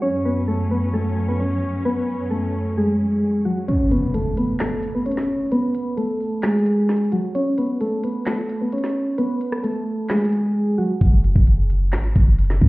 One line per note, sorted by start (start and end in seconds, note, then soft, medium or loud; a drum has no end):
0.02 3.65 F#2 medium
0.02 3.65 F#3 medium
0.02 3.65 C#4 medium
0.02 0.21 C#4 medium
0.02 0.20 C#5 loud
0.25 0.44 B3 medium
0.25 0.43 B4 medium
0.48 0.67 A3 medium
0.48 0.66 A4 medium
0.71 0.90 B3 medium
0.71 0.89 B4 medium
0.94 1.26 A3 medium
0.94 1.26 A4 medium
1.28 1.38 B3 medium
1.28 1.37 B4 medium
1.40 1.83 C#4 medium
1.40 1.83 C#5 medium
1.85 2.29 B3 medium
1.85 2.28 B4 loud
2.30 2.74 A3 medium
2.30 2.74 A4 medium
2.77 3.42 G#3 medium
2.77 3.42 G#4 medium
3.45 3.64 F#3 medium
3.45 3.64 F#4 medium
3.68 3.87 C#4 medium
3.68 3.86 C#5 loud
3.68 closed hi-hat medium
3.68 impact medium
3.91 4.10 B3 medium
3.91 4.10 B4 medium
3.91 closed hi-hat medium
4.14 4.33 A3 medium
4.14 4.33 A4 medium
4.14 closed hi-hat medium
4.37 4.56 B3 medium
4.37 4.56 B4 medium
4.37 closed hi-hat medium
4.60 4.93 A3 medium
4.60 4.93 A4 medium
4.60 snare loud
4.60 clap medium
4.60 closed hi-hat medium
4.83 closed hi-hat medium
4.95 5.04 B3 medium
4.95 5.04 B4 medium
5.06 5.49 C#4 medium
5.06 5.49 C#5 medium
5.06 closed hi-hat medium
5.12 closed hi-hat medium
5.17 snare medium
5.17 closed hi-hat medium
5.23 closed hi-hat soft
5.52 5.95 B3 medium
5.52 5.95 B4 loud
5.52 closed hi-hat medium
5.75 closed hi-hat medium
5.97 6.41 A3 medium
5.97 6.40 A4 medium
5.97 closed hi-hat medium
6.20 open hi-hat medium
6.43 7.08 G#3 medium
6.43 7.08 G#4 medium
6.43 snare loud
6.43 clap medium
6.43 closed hi-hat medium
6.51 closed hi-hat medium
6.59 closed hi-hat soft
6.66 closed hi-hat medium
6.89 snare medium
6.89 closed hi-hat medium
6.97 closed hi-hat medium
7.04 closed hi-hat soft
7.12 7.31 F#3 medium
7.12 7.30 F#4 medium
7.12 closed hi-hat medium
7.35 7.54 C#4 medium
7.35 7.53 C#5 loud
7.35 closed hi-hat medium
7.58 7.77 B3 medium
7.58 7.76 B4 medium
7.58 closed hi-hat medium
7.81 7.99 A3 medium
7.81 7.99 A4 medium
7.81 closed hi-hat medium
8.04 8.22 B3 medium
8.04 8.22 B4 medium
8.04 closed hi-hat medium
8.26 8.59 A3 medium
8.26 8.59 A4 medium
8.26 snare loud
8.26 clap medium
8.26 closed hi-hat medium
8.49 closed hi-hat medium
8.61 8.71 B3 medium
8.61 8.70 B4 medium
8.72 9.16 C#4 medium
8.72 9.16 C#5 medium
8.72 closed hi-hat medium
8.78 closed hi-hat medium
8.84 snare medium
8.84 closed hi-hat medium
8.89 closed hi-hat soft
9.18 9.62 B3 medium
9.18 9.61 B4 loud
9.18 closed hi-hat medium
9.41 closed hi-hat medium
9.52 cross-stick loud
9.63 10.07 A3 medium
9.63 10.07 A4 medium
9.63 closed hi-hat medium
10.09 10.75 G#3 medium
10.09 10.75 G#4 medium
10.09 snare loud
10.09 clap medium
10.09 closed hi-hat soft
10.17 closed hi-hat medium
10.25 closed hi-hat medium
10.32 closed hi-hat medium
10.78 10.97 F#3 medium
10.78 10.96 F#4 medium
11.01 11.34 F#1 loud
11.01 kick loud
11.01 closed hi-hat medium
11.24 closed hi-hat medium
11.36 11.94 F#1 loud
11.36 kick loud
11.47 closed hi-hat medium
11.70 closed hi-hat medium
11.93 12.15 G#1 loud
11.93 snare loud
11.93 clap medium
11.93 closed hi-hat medium
12.16 12.60 F#1 loud
12.16 kick medium
12.16 closed hi-hat medium
12.39 closed hi-hat medium
12.44 closed hi-hat medium
12.50 snare medium
12.50 closed hi-hat medium
12.56 closed hi-hat soft
12.62 12.69 F#2 loud
12.62 kick loud